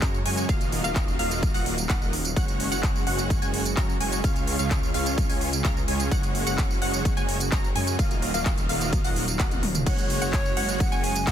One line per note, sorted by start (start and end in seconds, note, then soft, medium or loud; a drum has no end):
0.00 0.23 F#2 loud
0.00 0.45 C#3 medium
0.00 0.47 G#3 medium
0.00 0.18 G#3 medium
0.00 0.18 C#4 medium
0.00 0.47 F#4 medium
0.00 0.18 F#4 medium
0.00 0.18 C#5 medium
0.00 0.18 A#5 medium
0.00 0.18 A#5 loud
0.00 kick loud
0.00 clap loud
0.00 closed hi-hat medium
0.00 tambourine medium
0.14 tambourine soft
0.26 0.47 F#2 loud
0.26 0.46 G#3 medium
0.26 0.46 C#4 medium
0.26 0.46 F#4 medium
0.26 0.46 C#5 medium
0.26 0.46 G#5 medium
0.26 open hi-hat loud
0.37 closed hi-hat medium
0.37 tambourine medium
0.49 0.82 D#1 medium
0.49 2.35 D#3 medium
0.49 2.35 F#3 medium
0.49 0.81 A#3 medium
0.49 0.81 F4 medium
0.49 0.81 F#4 medium
0.49 0.81 D#5 medium
0.49 0.81 F5 loud
0.49 2.35 F5 medium
0.49 kick loud
0.49 closed hi-hat medium
0.49 tambourine medium
0.61 closed hi-hat soft
0.61 tambourine soft
0.72 open hi-hat loud
0.84 1.17 D#1 loud
0.84 1.17 A#3 medium
0.84 1.17 F4 medium
0.84 1.17 F#4 medium
0.84 1.17 D#5 medium
0.84 1.16 F5 medium
0.84 1.17 F5 medium
0.84 closed hi-hat soft
0.84 tambourine medium
0.96 kick loud
0.96 clap loud
0.96 closed hi-hat medium
0.96 tambourine medium
1.08 tambourine soft
1.19 1.52 D#1 loud
1.19 1.52 A#3 medium
1.19 1.52 F4 medium
1.19 1.52 F#4 medium
1.19 1.52 D#5 medium
1.19 1.52 F5 loud
1.19 open hi-hat loud
1.31 closed hi-hat soft
1.31 tambourine medium
1.43 kick loud
1.43 closed hi-hat medium
1.43 tambourine medium
1.54 1.87 D#1 loud
1.54 1.74 A#3 medium
1.54 1.74 F4 medium
1.54 1.74 F#4 medium
1.54 1.74 D#5 medium
1.54 1.74 F#5 loud
1.54 open hi-hat medium
1.54 tambourine soft
1.66 open hi-hat loud
1.78 closed hi-hat soft
1.78 tambourine medium
1.89 2.34 D#1 loud
1.89 2.15 A#3 medium
1.89 2.15 F4 medium
1.89 2.15 F#4 medium
1.89 2.15 D#5 medium
1.89 2.15 F#5 medium
1.89 kick loud
1.89 clap loud
1.89 closed hi-hat medium
1.89 tambourine medium
2.02 tambourine soft
2.13 open hi-hat loud
2.25 closed hi-hat medium
2.25 tambourine medium
2.36 2.69 F#1 loud
2.36 4.22 C#3 medium
2.36 7.95 G#3 medium
2.36 2.69 G#3 medium
2.36 2.69 C#4 medium
2.36 2.69 F#4 medium
2.36 4.22 F#4 medium
2.36 2.69 C#5 medium
2.36 2.69 F#5 loud
2.36 2.69 F#5 medium
2.36 kick loud
2.36 closed hi-hat medium
2.36 tambourine medium
2.48 closed hi-hat soft
2.48 tambourine soft
2.60 open hi-hat loud
2.72 3.04 F#1 medium
2.72 3.04 G#3 medium
2.72 3.04 C#4 medium
2.72 3.04 F#4 medium
2.72 3.04 C#5 medium
2.72 3.04 F#5 medium
2.72 closed hi-hat medium
2.72 tambourine medium
2.83 kick loud
2.83 clap loud
2.83 closed hi-hat medium
2.83 tambourine medium
2.96 tambourine soft
3.07 3.40 F#1 loud
3.07 3.39 G#3 medium
3.07 3.39 C#4 medium
3.07 3.39 F#4 medium
3.07 3.39 C#5 medium
3.07 3.39 F#5 loud
3.07 open hi-hat loud
3.19 closed hi-hat medium
3.19 tambourine medium
3.30 kick loud
3.30 closed hi-hat medium
3.30 tambourine medium
3.42 3.75 F#1 loud
3.42 3.62 G#3 medium
3.42 3.62 C#4 medium
3.42 3.62 F#4 medium
3.42 3.62 C#5 medium
3.42 3.62 G#5 loud
3.42 closed hi-hat soft
3.42 tambourine soft
3.54 open hi-hat loud
3.65 closed hi-hat medium
3.65 tambourine medium
3.77 3.98 F#2 loud
3.77 3.93 G#3 medium
3.77 3.93 C#4 medium
3.77 3.93 F#4 medium
3.77 3.93 C#5 medium
3.77 3.93 A#5 loud
3.77 kick loud
3.77 clap loud
3.77 closed hi-hat medium
3.77 tambourine medium
3.89 tambourine soft
4.01 4.22 F#1 medium
4.01 4.21 G#3 medium
4.01 4.21 C#4 medium
4.01 4.21 F#4 medium
4.01 4.21 C#5 medium
4.01 4.21 G#5 medium
4.01 open hi-hat loud
4.12 closed hi-hat medium
4.12 tambourine medium
4.24 4.57 C#2 loud
4.24 7.95 C#3 medium
4.24 4.56 G#3 medium
4.24 4.56 C#4 medium
4.24 6.10 F4 medium
4.24 4.56 F4 medium
4.24 4.56 F5 loud
4.24 kick loud
4.24 closed hi-hat medium
4.24 tambourine medium
4.36 closed hi-hat soft
4.36 tambourine soft
4.47 open hi-hat loud
4.59 4.92 C#2 loud
4.59 4.92 G#3 medium
4.59 4.92 C#4 medium
4.59 4.92 F4 medium
4.59 4.92 C#5 medium
4.59 4.91 F5 medium
4.59 4.92 F5 medium
4.59 closed hi-hat medium
4.59 tambourine medium
4.71 kick loud
4.71 clap loud
4.71 closed hi-hat medium
4.71 tambourine medium
4.83 tambourine soft
4.94 5.27 C#2 loud
4.94 5.27 G#3 medium
4.94 5.27 C#4 medium
4.94 5.27 F4 medium
4.94 5.27 C#5 medium
4.94 5.27 F5 loud
4.94 open hi-hat loud
5.06 closed hi-hat medium
5.06 tambourine medium
5.18 kick loud
5.18 closed hi-hat medium
5.18 tambourine medium
5.29 5.62 C#2 medium
5.29 5.49 G#3 medium
5.29 5.49 C#4 medium
5.29 5.49 F4 medium
5.29 5.49 C#5 medium
5.29 5.49 G#5 loud
5.29 open hi-hat medium
5.29 tambourine soft
5.41 open hi-hat loud
5.53 closed hi-hat medium
5.53 tambourine medium
5.64 5.86 C#2 loud
5.64 5.80 G#3 medium
5.64 5.80 C#4 medium
5.64 5.80 F4 medium
5.64 5.80 C#5 medium
5.64 5.80 A#5 loud
5.64 kick loud
5.64 clap loud
5.64 closed hi-hat medium
5.64 tambourine medium
5.77 tambourine soft
5.88 6.09 C#2 medium
5.88 6.09 G#3 medium
5.88 6.09 C#4 medium
5.88 6.09 F4 medium
5.88 6.09 C#5 medium
5.88 6.09 G#5 medium
5.88 open hi-hat loud
6.00 closed hi-hat medium
6.00 tambourine medium
6.11 6.44 F#1 medium
6.11 6.44 C#4 medium
6.11 7.97 F#4 loud
6.11 6.44 F#4 medium
6.11 6.44 C#5 medium
6.11 6.44 F#5 loud
6.11 kick loud
6.11 closed hi-hat medium
6.11 tambourine medium
6.23 closed hi-hat soft
6.23 tambourine soft
6.35 open hi-hat loud
6.47 6.79 F#1 medium
6.47 6.79 G#3 medium
6.47 6.79 C#4 medium
6.47 6.79 F#4 medium
6.47 6.79 C#5 medium
6.47 6.79 F#5 medium
6.47 closed hi-hat medium
6.47 tambourine medium
6.58 kick loud
6.58 clap loud
6.58 closed hi-hat medium
6.58 tambourine medium
6.71 tambourine soft
6.82 7.15 F#1 loud
6.82 7.14 G#3 medium
6.82 7.14 C#4 medium
6.82 7.14 F#4 medium
6.82 7.14 C#5 medium
6.82 7.14 F#5 loud
6.82 open hi-hat loud
6.93 closed hi-hat medium
6.93 tambourine medium
7.05 kick loud
7.05 closed hi-hat medium
7.05 tambourine medium
7.17 7.50 F#1 loud
7.17 7.37 G#3 medium
7.17 7.37 C#4 medium
7.17 7.37 F#4 medium
7.17 7.37 C#5 medium
7.17 7.37 G#5 loud
7.17 closed hi-hat soft
7.17 tambourine soft
7.29 open hi-hat loud
7.40 closed hi-hat medium
7.40 tambourine medium
7.52 7.73 F#1 loud
7.52 7.68 G#3 medium
7.52 7.68 C#4 medium
7.52 7.68 F#4 medium
7.52 7.68 C#5 medium
7.52 7.68 A#5 loud
7.52 7.68 A#5 medium
7.52 kick loud
7.52 clap loud
7.52 closed hi-hat medium
7.52 tambourine medium
7.64 tambourine soft
7.75 7.97 F#2 loud
7.75 7.96 G#3 medium
7.75 7.96 C#4 medium
7.75 7.96 F#4 medium
7.75 7.96 C#5 medium
7.75 7.96 G#5 medium
7.75 open hi-hat loud
7.87 closed hi-hat medium
7.87 tambourine medium
7.99 8.32 D#1 medium
7.99 9.85 D#3 medium
7.99 9.85 F#3 medium
7.99 8.31 A#3 medium
7.99 8.31 F4 medium
7.99 8.31 F#4 medium
7.99 8.31 D#5 medium
7.99 8.31 F5 loud
7.99 9.85 F5 medium
7.99 kick loud
7.99 closed hi-hat medium
7.99 tambourine medium
8.11 closed hi-hat soft
8.11 tambourine soft
8.22 open hi-hat loud
8.34 8.67 D#1 loud
8.34 8.67 A#3 medium
8.34 8.67 F4 medium
8.34 8.66 F#4 medium
8.34 8.67 D#5 medium
8.34 8.67 F5 loud
8.34 8.67 F5 medium
8.34 closed hi-hat medium
8.34 tambourine medium
8.46 kick loud
8.46 clap loud
8.46 closed hi-hat medium
8.46 tambourine medium
8.58 closed hi-hat soft
8.58 tambourine soft
8.69 9.02 D#1 loud
8.69 9.02 A#3 medium
8.69 9.02 F4 medium
8.69 9.02 F#4 medium
8.69 9.02 D#5 medium
8.69 9.02 F5 loud
8.69 open hi-hat loud
8.81 closed hi-hat medium
8.81 tambourine medium
8.93 kick loud
8.93 closed hi-hat medium
8.93 tambourine medium
9.04 9.37 D#1 loud
9.04 9.24 A#3 medium
9.04 9.24 F4 medium
9.04 9.24 F#4 medium
9.04 9.24 D#5 medium
9.04 9.24 F#5 loud
9.04 open hi-hat medium
9.04 tambourine soft
9.16 open hi-hat loud
9.28 closed hi-hat medium
9.28 tambourine medium
9.39 9.84 D#1 loud
9.39 9.65 A#3 medium
9.39 9.65 F4 medium
9.39 9.65 F#4 medium
9.39 9.65 D#5 medium
9.39 9.65 F#5 medium
9.39 kick loud
9.39 clap loud
9.39 closed hi-hat medium
9.39 tambourine medium
9.51 closed hi-hat soft
9.51 high tom medium
9.51 tambourine soft
9.63 open hi-hat loud
9.63 mid tom medium
9.75 closed hi-hat medium
9.75 mid tom medium
9.75 tambourine medium
9.86 10.19 F#1 medium
9.86 11.32 C#3 medium
9.86 10.19 G#3 medium
9.86 11.32 G#3 medium
9.86 10.19 C#4 medium
9.86 11.32 F#4 medium
9.86 10.19 F#4 medium
9.86 10.19 C#5 medium
9.86 10.82 C#5 loud
9.86 10.19 F#5 loud
9.86 kick loud
9.86 closed hi-hat medium
9.86 ride medium
9.86 tambourine medium
9.86 crash medium
9.98 closed hi-hat soft
9.98 tambourine soft
10.10 open hi-hat loud
10.10 ride medium
10.22 10.54 F#1 medium
10.22 10.54 G#3 medium
10.22 10.54 C#4 medium
10.22 10.54 F#4 medium
10.22 10.54 C#5 medium
10.22 10.54 F#5 medium
10.22 closed hi-hat medium
10.22 tambourine medium
10.33 kick loud
10.33 clap loud
10.33 closed hi-hat medium
10.33 ride medium
10.33 tambourine medium
10.46 tambourine soft
10.57 10.90 F#1 medium
10.57 10.89 G#3 medium
10.57 10.89 C#4 medium
10.57 10.89 F#4 medium
10.57 10.89 C#5 medium
10.57 10.89 F#5 loud
10.57 open hi-hat loud
10.57 ride medium
10.69 closed hi-hat medium
10.69 tambourine medium
10.80 11.05 F#5 loud
10.80 kick loud
10.80 closed hi-hat medium
10.80 ride medium
10.80 tambourine medium
10.92 11.25 F#1 loud
10.92 11.12 G#3 medium
10.92 11.12 C#4 medium
10.92 11.12 F#4 medium
10.92 11.12 C#5 medium
10.92 11.12 G#5 loud
10.92 closed hi-hat soft
10.92 tambourine soft
11.04 11.29 G#5 loud
11.04 open hi-hat loud
11.04 ride medium
11.16 closed hi-hat medium
11.16 tambourine medium
11.27 11.32 F#2 loud
11.27 11.32 G#3 medium
11.27 11.32 C#4 medium
11.27 11.32 F#4 medium
11.27 11.32 C#5 medium
11.27 11.32 F#5 loud
11.27 11.32 A#5 medium
11.27 11.32 A#5 loud
11.27 kick loud
11.27 clap loud
11.27 closed hi-hat medium
11.27 ride medium
11.27 tambourine medium